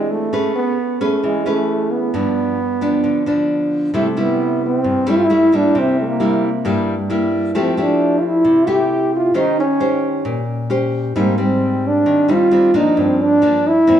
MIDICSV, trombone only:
0, 0, Header, 1, 2, 480
1, 0, Start_track
1, 0, Tempo, 451467
1, 344, Time_signature, 4, 2, 24, 8
1, 14883, End_track
2, 0, Start_track
2, 0, Title_t, "Trombone"
2, 0, Program_c, 0, 57
2, 0, Note_on_c, 0, 56, 87
2, 119, Note_on_c, 0, 57, 85
2, 135, Note_off_c, 0, 56, 0
2, 585, Note_off_c, 0, 57, 0
2, 591, Note_on_c, 0, 59, 92
2, 1035, Note_off_c, 0, 59, 0
2, 1084, Note_on_c, 0, 57, 70
2, 1298, Note_off_c, 0, 57, 0
2, 1332, Note_on_c, 0, 56, 75
2, 1568, Note_on_c, 0, 57, 82
2, 1584, Note_off_c, 0, 56, 0
2, 2035, Note_on_c, 0, 59, 91
2, 2051, Note_off_c, 0, 57, 0
2, 3710, Note_off_c, 0, 59, 0
2, 4247, Note_on_c, 0, 57, 79
2, 4475, Note_on_c, 0, 59, 91
2, 4491, Note_off_c, 0, 57, 0
2, 4930, Note_off_c, 0, 59, 0
2, 4959, Note_on_c, 0, 60, 95
2, 5429, Note_on_c, 0, 64, 107
2, 5445, Note_off_c, 0, 60, 0
2, 5495, Note_on_c, 0, 65, 88
2, 5511, Note_off_c, 0, 64, 0
2, 5577, Note_on_c, 0, 64, 102
2, 5593, Note_off_c, 0, 65, 0
2, 5905, Note_on_c, 0, 62, 90
2, 5921, Note_off_c, 0, 64, 0
2, 6152, Note_on_c, 0, 60, 93
2, 6168, Note_off_c, 0, 62, 0
2, 6369, Note_off_c, 0, 60, 0
2, 6386, Note_on_c, 0, 58, 86
2, 7283, Note_off_c, 0, 58, 0
2, 8075, Note_on_c, 0, 60, 82
2, 8301, Note_on_c, 0, 62, 93
2, 8317, Note_off_c, 0, 60, 0
2, 8707, Note_on_c, 0, 65, 74
2, 8723, Note_off_c, 0, 62, 0
2, 8782, Note_on_c, 0, 64, 97
2, 8798, Note_off_c, 0, 65, 0
2, 9255, Note_on_c, 0, 67, 107
2, 9270, Note_off_c, 0, 64, 0
2, 9719, Note_off_c, 0, 67, 0
2, 9738, Note_on_c, 0, 65, 80
2, 9967, Note_on_c, 0, 63, 89
2, 9983, Note_off_c, 0, 65, 0
2, 10195, Note_off_c, 0, 63, 0
2, 10208, Note_on_c, 0, 61, 94
2, 11113, Note_off_c, 0, 61, 0
2, 11890, Note_on_c, 0, 58, 79
2, 12131, Note_on_c, 0, 60, 84
2, 12147, Note_off_c, 0, 58, 0
2, 12623, Note_on_c, 0, 62, 98
2, 12638, Note_off_c, 0, 60, 0
2, 13095, Note_on_c, 0, 65, 102
2, 13111, Note_off_c, 0, 62, 0
2, 13571, Note_on_c, 0, 63, 88
2, 13587, Note_off_c, 0, 65, 0
2, 13797, Note_off_c, 0, 63, 0
2, 13821, Note_on_c, 0, 60, 87
2, 14062, Note_on_c, 0, 62, 102
2, 14078, Note_off_c, 0, 60, 0
2, 14540, Note_on_c, 0, 64, 108
2, 14556, Note_off_c, 0, 62, 0
2, 14883, Note_off_c, 0, 64, 0
2, 14883, End_track
0, 0, End_of_file